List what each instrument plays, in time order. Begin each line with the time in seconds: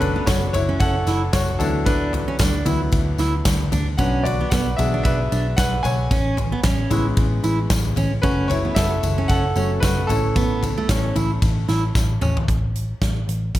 Already playing: picked electric bass F#1, grand piano F#3 A3 C#4 A4
0.00 grand piano D4 B4, floor tom, ride
0.16 steel-string acoustic guitar B3
0.26 picked electric bass F#1, steel-string acoustic guitar B3, grand piano F#4 C#5, kick, snare, ride, tambourine
0.53 picked electric bass F#1, grand piano E4 C#5, floor tom, ride, tambourine
0.69 steel-string acoustic guitar C#4
0.80 picked electric bass F#1, grand piano A4 F#5, kick, ride, tambourine
1.07 picked electric bass F#1, steel-string acoustic guitar E4, snare, ride, tambourine
1.33 picked electric bass F#1, grand piano F#4 C#5, kick, snare, ride, tambourine
1.49 floor tom
1.59 picked electric bass D2, grand piano F#3 B3 D4 E4 A4, floor tom, ride, tambourine
1.85 steel-string acoustic guitar D4, grand piano D4 B4, kick, ride, tambourine
2.13 floor tom, ride
2.28 steel-string acoustic guitar C#4
2.39 picked electric bass D2, steel-string acoustic guitar D4, kick, snare, ride, tambourine
2.65 picked electric bass D2, grand piano F#3 B3 E4, steel-string acoustic guitar E4, floor tom, ride, tambourine
2.92 picked electric bass D2, kick, ride, tambourine
3.18 picked electric bass D2, steel-string acoustic guitar E4, snare, ride, tambourine
3.45 picked electric bass D2, kick, snare, ride, tambourine
3.61 floor tom
3.72 picked electric bass D2, steel-string acoustic guitar D4, floor tom, ride, tambourine
3.98 picked electric bass B1, grand piano F#3 B3 D4 B4 F#5, steel-string acoustic guitar C#4, kick, ride, tambourine
4.23 grand piano F#4 D5, floor tom, ride
4.41 steel-string acoustic guitar B3
4.50 picked electric bass B1, steel-string acoustic guitar B3, grand piano B4 F#5, kick, snare, ride, tambourine
4.77 picked electric bass B1, grand piano F#3 B3 D4 G#4 E5, floor tom, ride, tambourine
4.94 steel-string acoustic guitar D4
5.03 picked electric bass B1, grand piano B4 E5, kick, ride, tambourine
5.32 picked electric bass B1, steel-string acoustic guitar D4, ride, tambourine
5.57 picked electric bass B1, grand piano B4 F#5, kick, snare, ride, tambourine
5.83 picked electric bass B1, grand piano C#5 G#5, floor tom, ride, tambourine
6.11 picked electric bass A1, steel-string acoustic guitar C#4, kick, ride, tambourine
6.37 floor tom, ride
6.52 steel-string acoustic guitar B3
6.63 picked electric bass A1, steel-string acoustic guitar C#4, kick, snare, ride, tambourine
6.90 picked electric bass A1, grand piano G#3 B3 C#4, steel-string acoustic guitar E4, floor tom, ride, tambourine
7.17 picked electric bass A1, kick, ride
7.44 picked electric bass A1, steel-string acoustic guitar E4, ride, tambourine
7.70 picked electric bass A1, kick, snare, ride, tambourine
7.85 floor tom
7.96 picked electric bass A1, steel-string acoustic guitar C#4, floor tom, ride, tambourine
8.22 picked electric bass F#1, grand piano F#3 A3 C#4 F#4 B4, steel-string acoustic guitar C#4, kick, ride, tambourine
8.48 grand piano E4 C#5, floor tom, ride, tambourine
8.65 steel-string acoustic guitar B3
8.75 picked electric bass F#1, steel-string acoustic guitar B3, grand piano A4 E5, kick, snare, ride, tambourine
9.03 picked electric bass F#1, floor tom, ride, tambourine
9.18 steel-string acoustic guitar C#4
9.28 picked electric bass F#1, grand piano A4 F#5, kick, ride, tambourine
9.55 picked electric bass F#1, grand piano F#3 A3 C#4, steel-string acoustic guitar C#4, ride, tambourine
9.80 picked electric bass F#1, grand piano F#4 B4, kick, snare, ride, tambourine
10.07 picked electric bass A1, grand piano E3 A3 C#4 A4, floor tom, ride, tambourine
10.36 steel-string acoustic guitar B3, kick, ride, tambourine
10.63 floor tom, ride, tambourine
10.78 steel-string acoustic guitar A3
10.89 picked electric bass A1, grand piano E3 A3 C#4, steel-string acoustic guitar C#4, kick, snare, ride, tambourine
11.16 picked electric bass A1, steel-string acoustic guitar E4, floor tom, ride, tambourine
11.42 picked electric bass A1, kick, ride, tambourine
11.68 picked electric bass A1, steel-string acoustic guitar E4, snare, ride, tambourine
11.95 picked electric bass A1, kick, snare, tambourine
12.21 picked electric bass A1, steel-string acoustic guitar C#4, mid tom, tambourine
12.37 floor tom
12.48 picked electric bass A1, kick, closed hi-hat
12.75 closed hi-hat
13.02 picked electric bass A1, kick, snare, closed hi-hat
13.28 picked electric bass A1, closed hi-hat
13.55 picked electric bass A1, kick, closed hi-hat